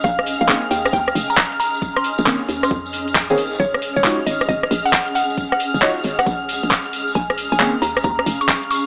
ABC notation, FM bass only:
X:1
M:4/4
L:1/16
Q:"Swing 16ths" 1/4=135
K:Ebdor
V:1 name="FM bass" clef=bass
B,,,3 B,,, z2 E,,2 E,,2 F,,, z4 z | z3 B,,, z2 E,,2 F,,4- F,, B,,,3 | E,,,3 E,,, z2 A,,,2 A,,,2 B,,, z4 z | z3 E,,, z2 A,,,2 B,,,3 B,,, z4 |
B,,,3 B,,, z2 E,,2 E,,2 F,,, z4 z |]